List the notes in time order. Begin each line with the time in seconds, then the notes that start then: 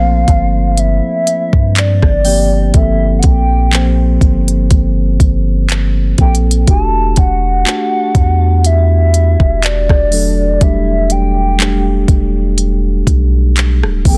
Already playing: A#1 F3 A3 A#3 C4 A4 C5 F5
0.28 G1, kick, closed hi-hat
0.77 E5, closed hi-hat
1.27 closed hi-hat
1.53 G2, kick
1.76 D5, clap, closed hi-hat
2.02 G1, kick, cross-stick
2.25 F3 A#3 C4 G4 G5, open hi-hat
2.73 G1 F3 A#3 C4 A4 E5, kick, closed hi-hat
3.19 F#5, closed hi-hat
3.24 A#1 G5, kick
3.72 F3 A#3 C4 C5, clap, closed hi-hat
4.21 G1, kick, closed hi-hat
4.48 closed hi-hat
4.71 G1, kick, closed hi-hat
5.20 G1, kick, closed hi-hat
5.69 clap, closed hi-hat
6.18 A#1 F3 A#3 C4 A4 G5, kick, closed hi-hat, open hi-hat
6.35 closed hi-hat
6.51 closed hi-hat
6.67 E1 A3 D4 F#4 G4 A5, kick, closed hi-hat
7.16 E1 F#5, kick, closed hi-hat
7.65 A3 D4 F#4 A5, clap, closed hi-hat
7.75 G4
8.15 E2, kick, closed hi-hat
8.64 E5, closed hi-hat
9.14 closed hi-hat
9.40 E1, kick
9.63 D5, clap, closed hi-hat
9.89 E1, kick, cross-stick
10.11 F#3 A3 D4 A4, open hi-hat
10.61 E1 G3 A3 D4 G4 E5, kick, closed hi-hat
11.10 G5, closed hi-hat
11.59 G3 A3 D4 G4, clap, closed hi-hat
12.08 E1, kick, closed hi-hat
12.58 closed hi-hat
13.07 B1, kick, closed hi-hat
13.56 clap, closed hi-hat
13.83 D1, cross-stick
14.05 G1 F3 A#3 C4 G#4 G5, kick, open hi-hat
14.14 A4